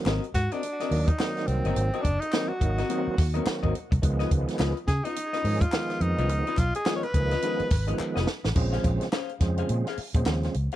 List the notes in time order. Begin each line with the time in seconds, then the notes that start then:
Already playing: D#3 F#3 A#3 C4
0.06 G#1 C4 F#4 A#4 D#5, snare, clap
0.24 closed hi-hat
0.34 G#2 F#4, muted clean electric guitar stroke, kick, snare, closed hi-hat
0.51 C4 D4 F#4 A#4 D#5, closed hi-hat
0.63 muted clean electric guitar stroke, closed hi-hat
0.80 C4 F#4 A#4 D#5, snare, closed hi-hat
0.90 D#2 D#3 F#3 A#3 D#4, muted clean electric guitar stroke, open hi-hat
1.07 D#4, muted clean electric guitar stroke, kick, closed hi-hat
1.19 D#3 F#3 A#3 C4, muted clean electric guitar stroke, snare, clap
1.37 muted clean electric guitar stroke, snare, closed hi-hat
1.47 C2 C4, closed hi-hat
1.65 G1 C4 F#4 A#4 D#5, closed hi-hat
1.76 G#1, muted clean electric guitar stroke, closed hi-hat
1.93 C4 F#4 A#4 D#5, closed hi-hat
2.02 F#1 D4, muted clean electric guitar stroke, kick, closed hi-hat
2.20 D#4, muted clean electric guitar stroke, closed hi-hat
2.33 D#3 F#3 A#3 C4 F#4 A#4 D#5, snare, clap
2.48 F#4
2.60 G#1 D#3 F#3 A#3 D#4, muted clean electric guitar stroke, kick, closed hi-hat
2.78 C4 F#4 A#4 D#5, snare, closed hi-hat
2.89 D#3 F#3 A#3 C4 F#4 A#4 D#5, closed hi-hat
3.07 muted fingered electric bass stroke
3.18 D#2, muted clean electric guitar stroke, kick, snare, open hi-hat
3.34 D#3 F#3 A#3 B3 C4 F#4 A#4 D#5, closed hi-hat
3.43 C4, muted clean electric guitar stroke, muted fingered electric bass stroke, clap
3.47 snare
3.63 G#1 C4 F#4 A#4 D#5, kick
3.75 muted clean electric guitar stroke, closed hi-hat
3.91 C2, muted clean electric guitar stroke, kick, closed hi-hat
4.02 C#2 D#3 F3 G#3 B3, muted clean electric guitar stroke, kick, closed hi-hat
4.19 C#4 F4 B4 D#5, snare, closed hi-hat
4.31 C#2, muted clean electric guitar stroke, kick, closed hi-hat
4.48 muted clean electric guitar stroke, snare, closed hi-hat
4.59 C#2 C#4 F4 B4 D#5, snare, clap
4.77 closed hi-hat
4.87 C#3 G#4, muted clean electric guitar stroke, kick, snare, closed hi-hat
5.04 C#4 D#4 F4 B4 D#5, closed hi-hat
5.16 muted clean electric guitar stroke, closed hi-hat
5.33 C#4 F4 B4 D#5, snare, closed hi-hat
5.44 G#2 D#3 F3 G#3 C#4, muted clean electric guitar stroke, open hi-hat
5.61 F4, muted clean electric guitar stroke, kick, closed hi-hat
5.72 D#3 E3 G#3 B3, muted clean electric guitar stroke, snare, clap
5.79 F3
5.90 muted clean electric guitar stroke, snare, closed hi-hat
6.01 F2 D#4, closed hi-hat
6.18 C2 C#4 F4 B4 D#5, closed hi-hat
6.29 C#2, muted clean electric guitar stroke, closed hi-hat
6.47 C#4 F4 B4 D#5, closed hi-hat
6.57 B1 F4, muted clean electric guitar stroke, kick, clap, closed hi-hat
6.75 G#4, muted clean electric guitar stroke, closed hi-hat
6.86 D#3 F3 G#3 B3 C#4 F4 B4 D#5, snare, clap
6.96 C#5
7.03 B4, closed hi-hat
7.14 C#2 D#3 F3 G#3 A#3, muted clean electric guitar stroke, kick, closed hi-hat
7.31 C#4 F4 B4 D#5, snare, closed hi-hat
7.42 D#3 F3 G#3 B3 C#4 F4 B4 D#5, closed hi-hat
7.59 muted fingered electric bass stroke, closed hi-hat
7.70 G#1, muted clean electric guitar stroke, kick, snare, open hi-hat
7.87 D#3 F3 G#3 B3 C#4 F4 B4 D#5, closed hi-hat
7.99 muted clean electric guitar stroke, muted fingered electric bass stroke, clap
8.16 F1 C#4 F4 B4 D#5, snare
8.27 snare
8.44 A1, muted clean electric guitar stroke, snare
8.55 A#1 C#3 F3 G#3 C4, muted clean electric guitar stroke, kick, crash
8.73 C#4 G#4 C5 F5, snare, closed hi-hat
8.84 A#1, muted clean electric guitar stroke, kick, closed hi-hat
9.01 muted clean electric guitar stroke, snare, closed hi-hat
9.12 C#4 G#4 C5 F5, snare, clap
9.29 closed hi-hat
9.40 F2 C#3 F3 G#3 C4, muted clean electric guitar stroke, kick, snare, closed hi-hat
9.57 C#4 G#4 C5 F5, closed hi-hat
9.69 A#2, muted clean electric guitar stroke, closed hi-hat
9.86 C#4 G#4 C5 F5, snare, closed hi-hat
9.97 muted fingered electric bass stroke, muted clean electric guitar stroke, open hi-hat
10.14 A#2 C#3 F3 G#3 C4, muted clean electric guitar stroke, kick, closed hi-hat
10.26 D#2, muted clean electric guitar stroke, snare, clap
10.43 muted clean electric guitar stroke, snare, closed hi-hat
10.54 C#2, closed hi-hat
10.72 F5, closed hi-hat